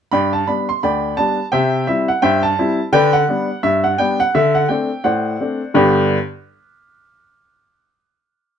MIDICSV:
0, 0, Header, 1, 2, 480
1, 0, Start_track
1, 0, Key_signature, 1, "major"
1, 0, Tempo, 705882
1, 78, Time_signature, 2, 2, 24, 8
1, 5840, End_track
2, 0, Start_track
2, 0, Title_t, "Upright piano"
2, 0, Program_c, 0, 0
2, 78, Note_on_c, 0, 83, 85
2, 84, Note_on_c, 0, 43, 71
2, 88, Note_on_c, 0, 74, 63
2, 88, Note_on_c, 0, 79, 62
2, 214, Note_off_c, 0, 74, 0
2, 214, Note_off_c, 0, 79, 0
2, 218, Note_off_c, 0, 83, 0
2, 224, Note_on_c, 0, 81, 72
2, 286, Note_off_c, 0, 43, 0
2, 321, Note_off_c, 0, 81, 0
2, 322, Note_on_c, 0, 83, 71
2, 323, Note_on_c, 0, 55, 36
2, 324, Note_on_c, 0, 59, 37
2, 329, Note_on_c, 0, 62, 49
2, 453, Note_off_c, 0, 55, 0
2, 454, Note_off_c, 0, 59, 0
2, 458, Note_off_c, 0, 62, 0
2, 460, Note_off_c, 0, 83, 0
2, 468, Note_on_c, 0, 84, 72
2, 563, Note_off_c, 0, 84, 0
2, 565, Note_on_c, 0, 83, 72
2, 566, Note_on_c, 0, 38, 59
2, 571, Note_on_c, 0, 79, 55
2, 572, Note_on_c, 0, 74, 64
2, 766, Note_off_c, 0, 38, 0
2, 788, Note_off_c, 0, 74, 0
2, 788, Note_off_c, 0, 79, 0
2, 789, Note_off_c, 0, 83, 0
2, 796, Note_on_c, 0, 81, 84
2, 800, Note_on_c, 0, 59, 41
2, 801, Note_on_c, 0, 55, 41
2, 806, Note_on_c, 0, 62, 52
2, 931, Note_off_c, 0, 59, 0
2, 932, Note_off_c, 0, 55, 0
2, 935, Note_off_c, 0, 62, 0
2, 988, Note_off_c, 0, 81, 0
2, 1032, Note_on_c, 0, 79, 91
2, 1038, Note_on_c, 0, 48, 75
2, 1039, Note_on_c, 0, 72, 62
2, 1039, Note_on_c, 0, 76, 68
2, 1241, Note_off_c, 0, 48, 0
2, 1261, Note_off_c, 0, 72, 0
2, 1261, Note_off_c, 0, 76, 0
2, 1262, Note_off_c, 0, 79, 0
2, 1274, Note_on_c, 0, 76, 80
2, 1278, Note_on_c, 0, 60, 46
2, 1279, Note_on_c, 0, 55, 49
2, 1282, Note_on_c, 0, 64, 46
2, 1409, Note_off_c, 0, 60, 0
2, 1410, Note_off_c, 0, 55, 0
2, 1412, Note_off_c, 0, 64, 0
2, 1415, Note_off_c, 0, 76, 0
2, 1417, Note_on_c, 0, 78, 75
2, 1511, Note_on_c, 0, 79, 97
2, 1513, Note_on_c, 0, 43, 75
2, 1516, Note_off_c, 0, 78, 0
2, 1518, Note_on_c, 0, 76, 72
2, 1519, Note_on_c, 0, 72, 65
2, 1646, Note_off_c, 0, 76, 0
2, 1647, Note_off_c, 0, 72, 0
2, 1652, Note_on_c, 0, 81, 85
2, 1653, Note_off_c, 0, 79, 0
2, 1718, Note_off_c, 0, 43, 0
2, 1759, Note_on_c, 0, 55, 53
2, 1760, Note_on_c, 0, 60, 52
2, 1762, Note_on_c, 0, 64, 62
2, 1890, Note_off_c, 0, 55, 0
2, 1890, Note_off_c, 0, 60, 0
2, 1892, Note_off_c, 0, 64, 0
2, 1924, Note_off_c, 0, 81, 0
2, 1990, Note_on_c, 0, 50, 95
2, 1990, Note_on_c, 0, 79, 105
2, 1997, Note_on_c, 0, 74, 80
2, 2000, Note_on_c, 0, 71, 82
2, 2125, Note_off_c, 0, 74, 0
2, 2127, Note_off_c, 0, 71, 0
2, 2129, Note_on_c, 0, 78, 89
2, 2132, Note_off_c, 0, 79, 0
2, 2195, Note_off_c, 0, 50, 0
2, 2232, Note_on_c, 0, 55, 50
2, 2237, Note_on_c, 0, 59, 50
2, 2239, Note_on_c, 0, 62, 53
2, 2364, Note_off_c, 0, 55, 0
2, 2367, Note_off_c, 0, 59, 0
2, 2369, Note_off_c, 0, 62, 0
2, 2453, Note_off_c, 0, 78, 0
2, 2469, Note_on_c, 0, 76, 86
2, 2470, Note_on_c, 0, 43, 74
2, 2609, Note_on_c, 0, 78, 77
2, 2611, Note_off_c, 0, 76, 0
2, 2675, Note_off_c, 0, 43, 0
2, 2709, Note_on_c, 0, 79, 91
2, 2710, Note_on_c, 0, 55, 49
2, 2711, Note_off_c, 0, 78, 0
2, 2712, Note_on_c, 0, 59, 55
2, 2715, Note_on_c, 0, 62, 59
2, 2843, Note_off_c, 0, 55, 0
2, 2844, Note_off_c, 0, 59, 0
2, 2846, Note_off_c, 0, 62, 0
2, 2850, Note_off_c, 0, 79, 0
2, 2855, Note_on_c, 0, 78, 92
2, 2954, Note_off_c, 0, 78, 0
2, 2956, Note_on_c, 0, 76, 89
2, 2957, Note_on_c, 0, 50, 87
2, 3092, Note_on_c, 0, 78, 79
2, 3094, Note_off_c, 0, 76, 0
2, 3159, Note_off_c, 0, 50, 0
2, 3186, Note_on_c, 0, 79, 72
2, 3189, Note_on_c, 0, 57, 47
2, 3192, Note_off_c, 0, 78, 0
2, 3196, Note_on_c, 0, 60, 47
2, 3197, Note_on_c, 0, 62, 56
2, 3322, Note_off_c, 0, 57, 0
2, 3327, Note_off_c, 0, 60, 0
2, 3328, Note_off_c, 0, 62, 0
2, 3418, Note_off_c, 0, 79, 0
2, 3427, Note_on_c, 0, 78, 76
2, 3430, Note_on_c, 0, 45, 60
2, 3435, Note_on_c, 0, 72, 54
2, 3436, Note_on_c, 0, 74, 50
2, 3637, Note_off_c, 0, 45, 0
2, 3675, Note_on_c, 0, 57, 38
2, 3678, Note_on_c, 0, 60, 38
2, 3679, Note_on_c, 0, 62, 44
2, 3807, Note_off_c, 0, 57, 0
2, 3810, Note_off_c, 0, 60, 0
2, 3811, Note_off_c, 0, 62, 0
2, 3889, Note_off_c, 0, 78, 0
2, 3890, Note_off_c, 0, 72, 0
2, 3890, Note_off_c, 0, 74, 0
2, 3905, Note_on_c, 0, 50, 80
2, 3908, Note_on_c, 0, 43, 93
2, 3910, Note_on_c, 0, 59, 77
2, 3911, Note_on_c, 0, 62, 78
2, 3913, Note_on_c, 0, 79, 58
2, 3914, Note_on_c, 0, 71, 74
2, 3915, Note_on_c, 0, 67, 77
2, 4186, Note_off_c, 0, 50, 0
2, 4188, Note_off_c, 0, 43, 0
2, 4188, Note_off_c, 0, 59, 0
2, 4189, Note_off_c, 0, 62, 0
2, 4190, Note_off_c, 0, 79, 0
2, 4191, Note_off_c, 0, 67, 0
2, 4191, Note_off_c, 0, 71, 0
2, 5840, End_track
0, 0, End_of_file